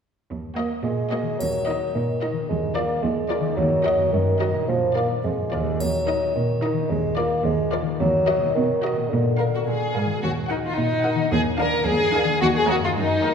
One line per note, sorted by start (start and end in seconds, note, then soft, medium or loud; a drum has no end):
0.30 0.73 D#2 soft
0.57 0.69 A#3 soft
0.57 0.78 A#3 soft
0.57 0.77 F#4 soft
0.57 0.78 D#5 soft
0.84 1.28 A#2 medium
0.84 1.38 G#3 medium
1.12 1.33 A#3 soft
1.12 1.33 F#4 soft
1.12 1.33 D#5 soft
1.22 2.31 D#3 soft
1.26 2.35 A#3 soft
1.31 2.47 D#4 soft
1.36 1.93 F#3 medium
1.36 2.44 A#4 soft
1.40 1.83 D#2 soft
1.40 triangle soft
1.67 1.88 D#4 soft
1.67 1.88 A#4 soft
1.67 1.88 D#5 soft
1.94 2.38 A#2 soft
1.94 2.48 D#3 soft
2.22 2.43 D#4 soft
2.22 2.43 A#4 soft
2.22 2.42 D#5 soft
2.32 3.39 D#3 soft
2.36 3.43 A#3 soft
2.41 3.56 D4 soft
2.45 2.92 D#2 soft
2.45 2.75 G#3 medium
2.45 3.52 A#4 soft
2.76 3.05 A#3 medium
2.76 2.97 F4 soft
2.76 2.97 A#4 soft
2.76 2.96 D5 soft
3.03 3.46 D#2 medium
3.03 3.56 G#3 medium
3.31 3.51 F4 soft
3.31 3.51 A#4 soft
3.31 3.51 D5 soft
3.40 4.06 D#3 soft
3.44 3.99 A#3 soft
3.49 4.03 D#4 soft
3.54 4.11 F#3 medium
3.54 4.08 A#4 soft
3.58 4.02 D#2 medium
3.85 4.06 F#4 soft
3.85 4.06 A#4 soft
3.85 4.06 D#5 medium
3.95 4.62 F#2 soft
4.00 4.54 A#3 soft
4.04 4.66 D#4 soft
4.09 4.67 D#3 medium
4.09 4.63 A#4 soft
4.13 4.57 F#2 medium
4.41 4.62 F#4 soft
4.41 4.61 A#4 soft
4.41 4.61 D#5 soft
4.50 5.73 A#2 soft
4.55 5.65 A#3 soft
4.60 5.78 D4 soft
4.64 5.74 A#4 soft
4.68 5.13 A#2 medium
4.68 4.95 F3 medium
4.96 5.08 A#3 soft
4.96 5.17 F4 soft
4.96 5.17 A#4 soft
4.96 5.17 D5 soft
5.24 5.32 F2 soft
5.24 5.82 G#3 medium
5.52 5.79 D#2 soft
5.52 5.73 F4 soft
5.52 5.73 A#4 soft
5.52 5.73 D5 soft
5.62 6.71 D#3 soft
5.66 6.76 A#3 soft
5.71 6.88 D#4 soft
5.75 6.85 A#4 soft
5.80 6.24 D#2 soft
5.80 6.35 F#3 medium
5.80 triangle soft
6.08 6.28 D#4 soft
6.08 6.28 A#4 soft
6.08 6.28 D#5 soft
6.35 6.79 A#2 soft
6.35 6.92 D#3 medium
6.62 6.83 D#4 soft
6.62 6.84 A#4 soft
6.62 6.83 D#5 soft
6.72 7.81 D#3 soft
6.77 7.85 A#3 soft
6.81 7.97 D4 soft
6.86 7.94 A#4 soft
6.90 7.33 D#2 medium
6.90 7.17 G#3 medium
7.17 7.44 A#3 medium
7.17 7.38 F4 soft
7.17 7.38 A#4 soft
7.17 7.38 D5 soft
7.45 7.88 D#2 medium
7.45 7.79 G#3 medium
7.73 7.93 F4 soft
7.73 7.93 A#4 soft
7.73 7.93 D5 soft
7.82 8.48 D#3 soft
7.86 8.40 A#3 soft
7.91 8.45 D#4 soft
7.95 8.49 A#4 soft
8.00 8.43 D#2 medium
8.00 8.51 F#3 medium
8.28 8.48 F#4 soft
8.28 8.48 A#4 soft
8.28 8.48 D#5 medium
8.37 9.04 B2 soft
8.42 8.96 A#3 soft
8.46 9.08 D#4 soft
8.50 9.05 A#4 soft
8.55 8.99 B2 medium
8.55 9.12 D#3 medium
8.83 9.03 F#4 soft
8.83 9.04 A#4 soft
8.83 9.04 D#5 soft
8.93 10.16 A#2 soft
8.97 10.08 A#3 soft
9.02 10.21 F4 soft
9.06 10.17 A#4 soft
9.10 9.55 A#2 medium
9.10 9.95 D3 medium
9.38 9.60 A#4 soft
9.38 9.59 F5 soft
9.55 9.60 F#4 soft
9.67 9.75 A#2 soft
9.67 10.22 G#4 soft
9.95 10.03 G#2 soft
9.95 10.16 A#4 soft
9.95 10.16 F5 soft
10.05 11.13 D#3 soft
10.09 11.18 A#3 soft
10.14 11.30 F#4 soft
10.18 11.27 A#4 soft
10.23 10.66 D#2 medium
10.23 10.31 F#4 medium
10.50 10.71 D#4 soft
10.50 10.56 D#4 soft
10.50 10.71 A#4 soft
10.50 10.71 F#5 soft
10.65 10.78 F4 medium
10.77 11.21 A#2 soft
10.77 11.32 D#4 medium
11.04 11.26 D#4 soft
11.04 11.26 A#4 soft
11.04 11.25 F#5 soft
11.15 12.23 D#3 soft
11.19 12.27 A#3 soft
11.24 12.39 D4 soft
11.28 11.40 G#4 medium
11.28 12.36 A#4 soft
11.32 11.75 D#2 medium
11.59 11.80 D4 soft
11.59 11.86 A#4 medium
11.59 11.80 A#4 soft
11.59 11.80 F5 medium
11.87 12.30 D#2 medium
11.87 12.40 G#4 medium
12.14 12.35 D4 medium
12.14 12.35 A#4 soft
12.14 12.34 F5 soft
12.24 12.90 D#3 soft
12.28 12.82 A#3 soft
12.32 12.87 D#4 soft
12.37 12.47 F#4 medium
12.37 12.91 A#4 soft
12.42 12.85 D#2 medium
12.57 12.70 G#4 medium
12.69 12.89 A#3 soft
12.69 12.75 F#4 medium
12.69 12.90 A#4 medium
12.69 12.89 D#5 medium
12.79 13.34 F#2 soft
12.83 13.34 A#3 soft
12.83 12.90 F4 medium
12.88 13.34 D#4 soft
12.92 13.34 A#4 soft
12.97 13.34 F#2 medium
12.97 13.34 D#4 medium
13.24 13.34 A#3 soft
13.24 13.34 A#4 soft
13.24 13.34 D#5 soft